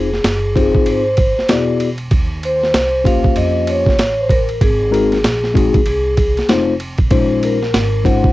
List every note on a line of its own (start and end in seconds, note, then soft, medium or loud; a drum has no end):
0.00 0.21 F1 medium
0.00 0.83 G#4 medium
0.13 snare soft
0.24 0.72 F#1 loud
0.24 snare loud
0.24 hi-hat pedal medium
0.24 ride medium
0.55 1.02 C4 medium
0.55 1.02 D#4 medium
0.55 1.02 F4 medium
0.55 0.64 G4 soft
0.55 1.03 C5 medium
0.55 kick medium
0.55 ride medium
0.63 1.06 G#4 medium
0.74 kick medium
0.86 1.35 G#1 medium
0.86 1.46 C5 medium
0.86 ride medium
1.17 kick medium
1.17 ride medium
1.38 muted upright bass stroke soft
1.38 snare soft
1.49 2.08 E1 medium
1.49 1.88 B3 medium
1.49 1.88 E4 medium
1.49 1.88 F#4 medium
1.49 1.88 G#4 medium
1.49 1.89 D5 medium
1.49 snare loud
1.49 hi-hat pedal soft
1.49 ride medium
1.80 ride medium
1.98 ride soft
2.11 2.71 D#2 medium
2.11 kick loud
2.11 ride medium
2.43 3.02 C5 loud
2.43 ride medium
2.63 snare soft
2.73 3.33 C2 medium
2.73 snare loud
2.73 hi-hat pedal medium
2.73 ride medium
3.04 3.94 A#3 medium
3.04 3.94 C#4 medium
3.04 3.94 F4 medium
3.04 3.94 G4 medium
3.04 3.94 C5 medium
3.04 3.35 F5 loud
3.04 kick medium
3.04 ride medium
3.24 kick medium
3.36 3.85 F2 medium
3.36 3.66 D#5 medium
3.36 ride medium
3.67 4.21 C#5 loud
3.67 ride medium
3.86 muted upright bass stroke soft
3.86 kick medium
3.86 snare soft
3.99 4.58 A1 medium
3.99 snare medium
3.99 hi-hat pedal soft
3.99 ride medium
4.21 4.32 C5 medium
4.29 4.59 A#4 medium
4.29 kick medium
4.29 ride medium
4.49 ride soft
4.61 5.21 G#1 medium
4.61 5.83 G#4 medium
4.61 kick loud
4.61 ride medium
4.91 5.16 G#3 medium
4.91 5.16 C4 medium
4.91 5.17 D#4 medium
4.91 5.17 F#4 medium
4.91 5.17 A#4 medium
4.91 ride medium
5.12 snare soft
5.12 ride soft
5.23 5.72 A#1 loud
5.23 snare loud
5.23 hi-hat pedal medium
5.23 ride medium
5.44 snare soft
5.54 5.79 G#3 medium
5.54 5.79 C4 medium
5.54 5.79 D#4 medium
5.54 5.79 F#4 medium
5.54 5.79 G#4 medium
5.54 kick medium
5.54 ride medium
5.74 kick loud
5.74 ride soft
5.86 6.35 C2 medium
5.86 6.46 G#4 medium
5.86 ride medium
6.17 kick medium
6.17 ride medium
6.37 muted upright bass stroke soft
6.37 snare soft
6.37 ride soft
6.49 7.08 F1 medium
6.49 6.73 A3 medium
6.49 6.73 C4 medium
6.49 6.73 D#4 medium
6.49 6.73 F4 medium
6.49 6.74 C5 medium
6.49 snare loud
6.49 hi-hat pedal soft
6.49 ride medium
6.80 ride medium
6.98 kick medium
6.98 ride soft
7.11 7.71 A#1 medium
7.11 7.58 G#3 medium
7.11 7.58 C#4 medium
7.11 7.58 D#4 medium
7.11 7.58 F4 medium
7.11 7.59 C5 medium
7.11 kick loud
7.11 ride medium
7.43 8.02 A#4 medium
7.43 ride medium
7.63 snare soft
7.73 8.22 G#1 medium
7.73 snare loud
7.73 hi-hat pedal medium
7.73 ride medium
8.04 8.29 G#3 medium
8.04 8.29 C#4 medium
8.04 8.29 D#4 medium
8.04 8.29 F4 medium
8.04 8.30 C5 medium
8.04 8.33 F#5 medium
8.04 kick medium
8.04 ride medium
8.24 kick loud